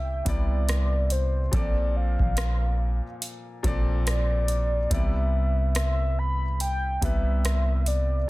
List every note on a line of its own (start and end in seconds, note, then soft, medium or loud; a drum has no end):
0.00 0.22 C2 loud
0.00 0.25 C3 medium
0.00 0.26 G3 medium
0.00 0.27 B3 medium
0.00 0.28 E4 medium
0.00 0.29 D5 medium
0.00 0.29 E5 loud
0.25 1.49 C2 loud
0.25 1.39 C3 medium
0.25 1.39 G3 medium
0.25 1.40 B3 medium
0.25 1.40 E4 medium
0.25 1.13 D5 loud
0.25 1.41 D5 medium
0.25 kick medium
0.25 closed hi-hat medium
0.69 cross-stick loud
0.69 closed hi-hat medium
1.10 1.55 C5 medium
1.10 closed hi-hat medium
1.51 2.17 A#1 loud
1.51 3.03 A#2 medium
1.51 3.04 F3 medium
1.51 3.04 C4 medium
1.51 3.05 A4 medium
1.51 1.98 D5 medium
1.51 3.05 D5 medium
1.51 kick loud
1.51 closed hi-hat medium
1.96 3.22 F5 loud
2.19 3.01 A#1 medium
2.19 kick medium
2.37 cross-stick loud
2.37 closed hi-hat medium
3.22 closed hi-hat medium
3.63 4.87 A#1 loud
3.63 4.77 A#2 medium
3.63 4.77 F3 medium
3.63 4.78 C4 medium
3.63 4.78 A4 medium
3.63 4.79 D5 medium
3.63 kick medium
3.63 closed hi-hat medium
4.07 4.93 D5 loud
4.07 cross-stick loud
4.07 closed hi-hat medium
4.48 closed hi-hat medium
4.90 6.98 C2 loud
4.90 6.42 C3 medium
4.90 6.42 G3 medium
4.90 6.42 B3 medium
4.90 6.43 E4 medium
4.90 6.43 D5 medium
4.90 5.76 E5 loud
4.90 kick loud
4.90 closed hi-hat medium
5.75 6.20 E5 loud
5.75 cross-stick loud
5.75 closed hi-hat medium
6.19 6.60 B5 loud
6.60 7.05 G5 loud
6.60 closed hi-hat medium
7.01 8.25 C2 loud
7.01 8.15 C3 medium
7.01 8.15 G3 medium
7.01 8.16 B3 medium
7.01 8.16 E4 medium
7.01 8.17 B4 medium
7.01 7.89 E5 loud
7.01 kick medium
7.01 closed hi-hat medium
7.45 cross-stick loud
7.45 closed hi-hat medium
7.86 8.29 D5 medium
7.86 closed hi-hat medium